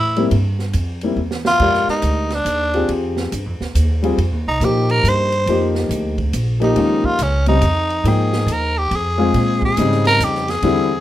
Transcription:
0.00 0.31 A2 medium
0.00 0.29 E4 loud
0.16 0.31 G3 medium
0.16 0.31 A#3 medium
0.16 0.31 C4 medium
0.16 0.31 E4 medium
0.16 ride medium
0.31 0.73 G2 medium
0.31 ride medium
0.59 snare soft
0.73 1.16 F2 medium
0.73 hi-hat pedal medium
0.73 ride medium
1.01 1.17 G3 medium
1.01 1.17 A#3 medium
1.01 1.17 C4 medium
1.01 1.17 E4 medium
1.01 ride soft
1.17 1.59 E2 medium
1.31 snare medium
1.45 1.86 F4 loud
1.45 snare medium
1.60 1.86 F2 medium
1.60 2.26 G#3 medium
1.60 2.26 G4 medium
1.60 2.27 A#4 medium
1.60 2.26 D5 medium
1.60 kick medium
1.60 crash medium
1.74 snare soft
1.88 2.36 D#4 medium
1.88 muted upright bass stroke soft
1.88 snare soft
2.02 2.44 D2 medium
2.02 hi-hat pedal medium
2.02 ride medium
2.30 2.91 D4 loud
2.30 snare soft
2.30 ride soft
2.45 2.88 D#2 medium
2.45 hi-hat pedal medium
2.45 ride medium
2.74 3.30 C4 medium
2.74 3.30 F4 medium
2.74 3.29 G4 medium
2.74 3.30 G#4 medium
2.74 ride soft
2.89 3.31 F2 medium
2.89 ride medium
3.17 snare medium
3.32 3.46 G2 medium
3.32 hi-hat pedal medium
3.32 ride medium
3.46 3.60 F2 medium
3.60 3.74 D#2 medium
3.60 snare medium
3.75 4.17 D#2 medium
3.75 hi-hat pedal medium
3.75 ride medium
4.02 4.17 G3 medium
4.02 4.17 C4 medium
4.02 4.17 F4 medium
4.02 4.18 G#4 medium
4.02 ride soft
4.18 4.32 F2 medium
4.18 ride medium
4.32 4.46 D#2 medium
4.47 4.60 C2 medium
4.47 4.66 D#4 medium
4.60 5.03 A#2 loud
4.60 5.27 F3 medium
4.60 5.27 A#3 medium
4.60 5.28 D#4 medium
4.60 5.28 G4 medium
4.60 hi-hat pedal medium
4.60 ride medium
4.65 4.92 G4 medium
4.89 5.10 A#4 loud
4.89 ride medium
5.03 5.46 G2 medium
5.03 hi-hat pedal medium
5.03 ride medium
5.08 5.77 C5 medium
5.32 ride soft
5.46 5.89 F2 medium
5.46 6.13 F3 medium
5.46 6.14 A#3 medium
5.46 6.14 D#4 medium
5.46 ride medium
5.50 6.14 G4 medium
5.75 snare medium
5.89 6.32 D2 medium
5.89 hi-hat pedal medium
5.89 ride medium
6.18 kick medium
6.18 ride soft
6.33 6.75 A#1 medium
6.33 hi-hat pedal medium
6.33 ride medium
6.60 7.16 F3 medium
6.60 7.16 A#3 medium
6.60 7.16 D#4 medium
6.60 7.07 D#4 medium
6.60 7.17 G4 medium
6.60 ride soft
6.75 7.02 D#2 medium
6.75 7.01 D#3 medium
6.75 7.01 G#3 medium
6.75 7.02 C#4 medium
6.75 7.02 F4 medium
6.75 ride medium
7.03 7.24 F4 loud
7.03 muted upright bass stroke soft
7.03 kick soft
7.19 7.61 C#2 loud
7.19 7.48 C#4 medium
7.19 hi-hat pedal medium
7.19 ride medium
7.46 7.61 C#3 medium
7.46 7.61 G3 medium
7.46 7.61 C4 medium
7.46 8.09 D#4 loud
7.46 7.62 D#4 medium
7.46 ride medium
7.61 8.03 F2 medium
7.61 hi-hat pedal medium
7.61 ride medium
7.90 ride soft
8.04 8.46 G#2 medium
8.04 8.71 F3 medium
8.04 8.71 A#3 medium
8.04 8.71 D#4 medium
8.04 8.53 G#4 medium
8.04 8.72 G5 medium
8.04 ride medium
8.33 snare medium
8.46 8.89 D#2 loud
8.46 hi-hat pedal soft
8.46 ride medium
8.52 8.79 A#4 loud
8.78 8.97 G4 loud
8.91 9.33 F2 loud
8.91 ride medium
8.96 9.64 G#4 medium
9.18 9.74 G#3 medium
9.18 9.74 C4 medium
9.18 9.74 F4 medium
9.18 9.75 G#4 medium
9.34 9.76 A#2 medium
9.34 ride medium
9.62 10.04 G#4 loud
9.62 kick medium
9.77 10.19 G#2 loud
9.77 10.43 C#3 medium
9.77 10.43 G3 medium
9.77 10.43 C4 medium
9.77 10.44 D#4 medium
9.77 hi-hat pedal medium
9.77 ride medium
9.91 snare soft
10.05 10.25 A#4 loud
10.05 snare medium
10.05 ride medium
10.19 10.61 F2 loud
10.19 hi-hat pedal medium
10.19 ride medium
10.24 10.52 G4 loud
10.35 snare soft
10.48 11.00 G#4 loud
10.48 snare soft
10.48 ride medium
10.62 11.00 E2 medium
10.62 10.88 D3 medium
10.62 10.89 G3 medium
10.62 10.89 C4 medium
10.62 10.89 E4 loud
10.62 ride medium

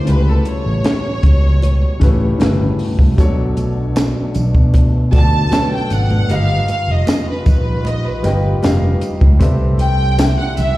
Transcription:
0.00 3.14 G3 medium
0.05 0.37 C#2 loud
0.05 6.26 B2 medium
0.05 1.03 C#3 medium
0.05 1.03 A3 medium
0.05 1.04 E4 medium
0.05 3.15 G4 medium
0.05 1.04 G4 medium
0.05 0.14 A#4 medium
0.05 0.27 B4 medium
0.05 closed hi-hat medium
0.15 1.08 B4 medium
0.28 0.46 A4 medium
0.45 2.41 C#5 medium
0.45 closed hi-hat medium
0.45 muted conga soft
0.66 0.81 A1 medium
0.84 snare loud
0.84 closed hi-hat medium
0.84 high conga medium
1.23 1.83 C#2 medium
1.23 kick medium
1.23 closed hi-hat medium
1.23 low conga medium
1.62 closed hi-hat medium
1.62 muted conga soft
2.00 2.31 A1 medium
2.00 2.25 C#3 medium
2.00 2.25 A3 medium
2.00 2.26 E4 medium
2.00 2.26 G4 medium
2.00 2.27 B4 medium
2.00 kick medium
2.00 snare soft
2.00 closed hi-hat medium
2.00 muted conga medium
2.39 2.70 G1 medium
2.39 2.88 C#3 medium
2.39 2.89 A3 medium
2.39 2.89 E4 medium
2.39 2.89 G4 medium
2.39 2.90 B4 medium
2.39 snare loud
2.39 closed hi-hat loud
2.39 high conga medium
2.79 open hi-hat medium
2.99 3.19 C2 medium
2.99 kick medium
2.99 high conga medium
3.17 4.12 B1 medium
3.17 4.15 B2 medium
3.17 4.15 F#3 medium
3.17 6.27 A3 medium
3.17 6.26 D4 medium
3.17 4.16 D4 medium
3.17 4.16 A4 medium
3.17 4.16 C#5 loud
3.17 kick loud
3.17 closed hi-hat medium
3.17 tambourine soft
3.57 closed hi-hat medium
3.57 tambourine soft
3.57 muted conga soft
3.96 snare loud
3.96 closed hi-hat medium
3.96 tambourine medium
3.96 high conga medium
4.35 4.50 B1 medium
4.35 closed hi-hat medium
4.35 tambourine medium
4.35 low conga medium
4.55 5.15 B2 medium
4.55 kick medium
4.74 kick medium
4.74 closed hi-hat medium
4.74 muted conga medium
5.11 5.43 D2 medium
5.11 5.36 B2 medium
5.11 5.37 F#3 medium
5.11 5.37 D4 medium
5.11 5.37 A4 medium
5.11 5.38 D5 medium
5.11 5.68 A5 loud
5.11 kick medium
5.11 closed hi-hat medium
5.11 tambourine soft
5.11 muted conga medium
5.49 5.99 B2 medium
5.49 6.00 F#3 medium
5.49 6.00 D4 medium
5.49 6.01 A4 medium
5.49 6.64 B4 medium
5.49 6.01 C#5 medium
5.49 snare loud
5.49 closed hi-hat loud
5.49 tambourine medium
5.49 high conga medium
5.74 5.92 G5 loud
5.90 6.21 G#1 medium
5.90 6.31 F#5 medium
5.90 closed hi-hat medium
5.90 tambourine soft
6.10 high conga medium
6.28 6.60 G1 loud
6.28 9.38 D#3 medium
6.28 7.26 G3 medium
6.28 10.78 G3 medium
6.28 9.38 F4 medium
6.28 7.26 G4 medium
6.28 7.26 A#4 medium
6.28 7.27 B4 medium
6.28 7.27 D#5 medium
6.28 7.28 F5 medium
6.28 6.69 F5 loud
6.28 closed hi-hat medium
6.28 tambourine soft
6.68 6.88 F5 medium
6.68 closed hi-hat medium
6.68 muted conga soft
6.88 7.03 F1 medium
6.88 7.28 D#5 medium
7.07 snare loud
7.07 closed hi-hat medium
7.07 tambourine medium
7.07 high conga medium
7.29 7.46 B4 medium
7.46 8.06 A#1 medium
7.46 7.83 B4 medium
7.46 kick medium
7.46 closed hi-hat medium
7.46 tambourine medium
7.46 low conga medium
7.85 8.05 D#5 medium
7.85 closed hi-hat medium
7.85 muted conga soft
8.06 8.44 B4 medium
8.22 8.54 G1 loud
8.22 8.47 G3 medium
8.22 8.48 G4 medium
8.22 8.48 A#4 medium
8.22 8.48 B4 medium
8.22 9.48 D#5 medium
8.22 8.49 D#5 medium
8.22 8.49 G5 medium
8.22 snare soft
8.22 closed hi-hat medium
8.22 tambourine soft
8.22 muted conga medium
8.61 8.93 F1 loud
8.61 9.11 G3 medium
8.61 9.11 G4 medium
8.61 9.12 A#4 medium
8.61 9.12 B4 medium
8.61 9.12 D#5 medium
8.61 9.12 F5 medium
8.61 snare loud
8.61 closed hi-hat medium
8.61 tambourine medium
8.61 high conga medium
9.01 closed hi-hat medium
9.01 tambourine medium
9.21 9.36 C#2 medium
9.21 kick medium
9.21 high conga medium
9.39 10.34 C2 loud
9.39 10.78 D3 medium
9.39 10.78 A3 medium
9.39 10.37 C4 medium
9.39 10.78 E4 medium
9.39 10.37 G4 medium
9.39 10.38 A4 medium
9.39 10.38 B4 medium
9.39 10.38 D5 medium
9.39 10.39 E5 medium
9.39 kick loud
9.39 closed hi-hat medium
9.39 tambourine soft
9.79 10.35 G5 loud
9.79 closed hi-hat medium
9.79 muted conga soft
10.19 10.78 E5 medium
10.19 snare loud
10.19 closed hi-hat loud
10.19 tambourine medium
10.19 high conga medium
10.39 10.58 F#5 medium
10.57 10.73 C2 medium
10.57 10.78 E5 loud
10.57 10.78 G5 medium
10.57 closed hi-hat medium
10.57 tambourine medium
10.57 low conga medium

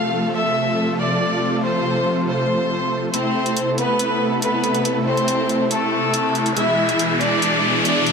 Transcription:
0.00 3.10 C3 medium
0.00 3.10 F3 medium
0.00 3.10 A3 medium
0.00 3.10 F4 medium
0.00 3.10 A4 medium
0.00 0.27 F5 medium
0.35 0.91 E5 loud
0.99 1.55 D5 medium
1.64 2.20 C5 medium
2.28 3.05 C5 medium
3.14 6.53 C3 medium
3.14 6.53 A3 medium
3.14 3.70 C4 medium
3.14 8.12 E4 medium
3.14 6.53 A4 medium
3.14 3.70 C5 medium
3.14 closed hi-hat medium
3.14 riser medium
3.46 closed hi-hat medium
3.57 closed hi-hat medium
3.78 4.34 B3 medium
3.78 4.34 B4 loud
3.78 closed hi-hat medium
3.99 closed hi-hat medium
4.42 4.98 B3 medium
4.42 4.98 B4 medium
4.42 closed hi-hat medium
4.64 closed hi-hat medium
4.75 closed hi-hat medium
4.85 closed hi-hat medium
5.07 5.62 C4 medium
5.07 5.62 C5 medium
5.17 closed hi-hat medium
5.28 closed hi-hat medium
5.49 closed hi-hat medium
5.71 6.48 A3 medium
5.71 6.48 A4 medium
5.71 closed hi-hat medium
6.14 closed hi-hat medium
6.35 closed hi-hat medium
6.46 closed hi-hat medium
6.57 8.12 B2 medium
6.57 8.12 E3 medium
6.57 8.12 G#3 medium
6.57 7.12 E4 medium
6.57 8.12 G#4 medium
6.57 7.12 E5 loud
6.57 closed hi-hat medium
6.89 closed hi-hat medium
6.99 closed hi-hat medium
7.21 7.77 D4 medium
7.21 7.77 D5 loud
7.21 closed hi-hat medium
7.42 closed hi-hat medium
7.85 8.12 D4 medium
7.85 8.12 D5 medium
7.85 closed hi-hat medium
8.07 closed hi-hat medium

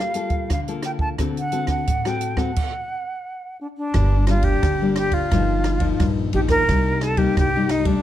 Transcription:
0.00 0.48 G3 medium
0.00 0.11 A#3 soft
0.00 0.11 F4 soft
0.00 0.12 A4 medium
0.00 0.50 F5 medium
0.14 0.48 A#3 medium
0.14 0.48 F4 medium
0.14 0.49 A4 medium
0.14 closed hi-hat soft
0.30 kick medium
0.30 closed hi-hat soft
0.50 1.16 D3 medium
0.50 0.60 F5 medium
0.50 kick medium
0.50 cross-stick medium
0.50 closed hi-hat medium
0.68 1.14 A#3 medium
0.68 1.15 F4 medium
0.68 1.15 A4 medium
0.68 closed hi-hat soft
0.82 0.91 G5 medium
0.82 cross-stick medium
0.82 closed hi-hat soft
0.99 1.09 A5 medium
0.99 kick medium
1.18 1.85 D3 medium
1.18 1.40 C4 soft
1.18 1.40 F#4 soft
1.18 1.40 A4 soft
1.18 kick medium
1.18 cross-stick medium
1.18 closed hi-hat soft
1.37 1.69 F#5 medium
1.37 closed hi-hat soft
1.52 1.85 C4 medium
1.52 1.86 F#4 soft
1.52 1.86 A4 medium
1.52 closed hi-hat soft
1.67 2.09 F#5 medium
1.67 kick medium
1.67 cross-stick medium
1.67 closed hi-hat soft
1.87 2.53 A2 medium
1.87 kick medium
1.87 closed hi-hat medium
2.05 2.35 C4 medium
2.05 2.35 F#4 medium
2.05 2.35 A4 medium
2.05 2.40 G5 medium
2.05 cross-stick medium
2.05 closed hi-hat soft
2.21 closed hi-hat soft
2.37 2.50 C4 medium
2.37 2.50 F#4 medium
2.37 2.51 A4 medium
2.37 3.59 F#5 medium
2.37 kick medium
2.37 cross-stick medium
2.56 kick medium
2.56 crash medium
3.61 3.67 D4 medium
3.77 4.25 D4 medium
3.94 4.53 G1 loud
3.94 4.60 G2 medium
3.94 4.15 G3 medium
3.94 4.15 A#3 medium
3.94 4.15 D4 medium
3.94 kick medium
3.94 cross-stick medium
3.94 ride soft
4.27 4.74 G3 medium
4.27 4.75 A#3 medium
4.27 4.75 D4 medium
4.27 4.46 F4 medium
4.27 cross-stick medium
4.27 ride soft
4.43 4.97 G4 medium
4.43 kick medium
4.43 ride soft
4.63 5.21 G1 medium
4.63 5.29 D3 medium
4.63 kick medium
4.63 cross-stick medium
4.63 ride soft
4.82 5.27 G3 medium
4.82 5.27 A#3 medium
4.82 5.27 D4 medium
4.96 5.15 G4 medium
4.96 cross-stick medium
4.96 ride soft
5.12 6.10 F4 medium
5.12 kick medium
5.12 ride soft
5.31 5.90 G1 medium
5.31 5.97 G2 medium
5.31 5.78 F3 medium
5.31 5.78 A#3 medium
5.31 5.79 D#4 medium
5.31 kick medium
5.31 cross-stick medium
5.31 ride soft
5.64 cross-stick medium
5.64 ride soft
5.80 6.28 F3 medium
5.80 6.28 A#3 medium
5.80 6.28 D#4 medium
5.80 kick medium
5.80 ride soft
6.00 6.29 A#1 medium
6.00 6.65 G2 medium
6.00 kick medium
6.00 cross-stick medium
6.00 ride soft
6.33 6.63 A#1 medium
6.33 6.63 F3 medium
6.33 6.63 A#3 medium
6.33 6.63 D#4 medium
6.33 6.40 G4 medium
6.33 ride soft
6.49 7.04 A#4 loud
6.49 kick medium
6.49 cross-stick medium
6.49 ride soft
6.69 7.27 C2 medium
6.69 7.34 C3 medium
6.69 7.15 G3 medium
6.69 7.15 A#3 medium
6.69 7.15 D#4 medium
6.69 kick medium
6.69 cross-stick medium
6.69 ride soft
7.01 7.19 A4 loud
7.01 cross-stick medium
7.01 ride soft
7.17 7.48 G3 medium
7.17 7.48 A#3 medium
7.17 7.48 D#4 medium
7.17 7.36 G4 medium
7.17 kick medium
7.17 ride soft
7.37 7.96 C2 medium
7.37 8.02 G2 medium
7.37 7.73 G4 medium
7.37 kick medium
7.37 cross-stick medium
7.37 ride soft
7.56 7.84 G3 medium
7.56 7.84 A#3 medium
7.56 7.84 D#4 medium
7.69 7.88 D#4 medium
7.69 cross-stick medium
7.69 ride soft
7.85 8.02 G3 medium
7.85 8.02 A3 medium
7.85 8.02 D4 medium
7.85 kick medium
7.85 ride soft

